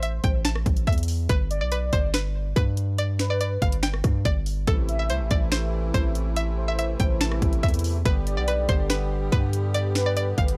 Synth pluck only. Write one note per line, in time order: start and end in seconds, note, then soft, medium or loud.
0.03 0.19 E5 medium
0.24 0.41 G5 medium
0.45 0.85 A5 medium
0.87 1.27 E5 medium
1.29 1.59 B4 loud
1.61 1.69 D5 medium
1.72 1.89 B4 medium
1.93 2.10 C5 medium
2.14 2.54 B4 medium
2.56 2.96 B4 medium
2.98 3.28 D5 medium
3.30 3.39 D5 medium
3.41 3.58 D5 medium
3.62 3.79 F5 medium
3.83 4.23 G5 medium
4.25 4.65 D5 loud
4.67 4.97 A4 loud
4.99 5.08 E5 medium
5.10 5.27 C5 medium
5.31 5.48 D5 medium
5.52 5.92 C5 medium
5.94 6.34 C5 medium
6.36 6.66 E5 loud
6.68 6.77 E5 medium
6.79 6.96 E5 medium
7.00 7.17 G5 medium
7.21 7.61 A5 medium
7.63 8.03 E5 medium
8.05 8.35 B4 loud
8.37 8.46 D5 medium
8.48 8.65 B4 medium
8.69 8.86 C5 medium
8.90 9.30 B4 medium
9.32 9.72 B4 medium
9.74 10.04 D5 medium
10.06 10.15 D5 medium
10.17 10.34 D5 medium
10.38 10.55 F5 medium